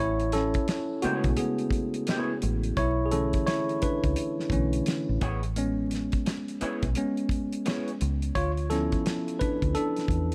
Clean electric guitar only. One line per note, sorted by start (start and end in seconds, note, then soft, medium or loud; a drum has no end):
0.69 muted clean electric guitar stroke soft
1.03 1.26 B3 medium
1.03 1.27 E4 medium
1.03 1.27 G#4 medium
1.03 1.27 C#5 medium
2.08 2.31 B3 medium
2.08 2.31 E4 medium
2.08 2.32 G#4 medium
2.08 2.32 C#5 medium
5.21 5.40 B3 medium
5.21 5.40 E4 medium
5.21 5.40 G#4 medium
5.21 5.40 C#5 medium
6.26 muted clean electric guitar stroke soft
6.61 6.84 B3 medium
6.61 6.84 E4 medium
6.61 6.84 G#4 medium
6.61 6.84 C#5 medium
7.66 7.88 B3 medium
7.66 7.88 E4 medium
7.66 7.89 G#4 medium
7.66 7.89 C#5 medium